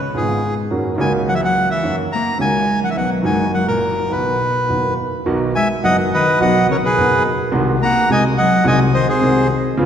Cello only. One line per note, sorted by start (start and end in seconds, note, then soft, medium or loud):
0.15 0.54 G#2 soft
1.00 1.12 G#3 medium
1.28 1.39 E3 soft
1.28 1.31 F#3 medium
1.43 1.68 F#3 medium
1.71 1.96 E3 medium
2.12 2.38 A#3 medium
2.40 2.79 G#3 medium
2.82 2.88 F#3 soft
2.90 2.96 E3 soft
2.97 3.10 F#3 soft
3.25 3.51 G#3 medium
3.54 3.67 F#3 soft
3.67 4.07 A#2 soft
4.10 4.93 B2 soft
5.56 5.68 G#3 medium
5.84 5.96 F#3 medium
6.12 6.38 D#3 medium
6.40 6.66 F#3 medium
6.67 6.74 C#3 medium
6.82 7.22 B2 medium
7.81 8.07 A#3 medium
8.08 8.21 G#3 medium
8.37 8.63 F#3 medium
8.67 8.79 G#3 medium
8.95 9.07 D#3 medium
9.10 9.48 C3 medium